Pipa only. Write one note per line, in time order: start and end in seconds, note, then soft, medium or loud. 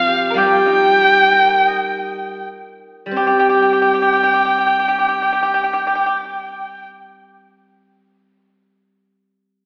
0.30 0.37 A#4 soft
0.38 2.37 G4 medium
3.17 3.26 G4 medium
3.27 3.38 G4 soft
3.39 3.48 G4 medium
3.49 3.60 G4 soft
3.62 3.72 G4 soft
3.73 3.81 G4 soft
3.82 3.92 G4 medium
3.94 4.01 G4 soft
4.02 4.12 G4 soft
4.13 4.22 G4 soft
4.23 4.32 G4 soft
4.34 4.44 G4 soft
4.45 4.55 G4 soft
4.58 4.65 G4 soft
4.67 4.76 G4 soft
4.79 4.87 G4 soft
4.88 4.98 G4 soft
4.99 5.07 G4 soft
5.08 5.18 G4 soft
5.22 5.31 G4 soft
5.33 5.41 G4 soft
5.43 5.52 G4 soft
5.54 5.62 G4 medium
5.64 5.72 G4 soft
5.73 5.83 G4 medium
5.87 5.94 G4 soft
5.95 6.05 G4 medium
6.06 6.16 G4 soft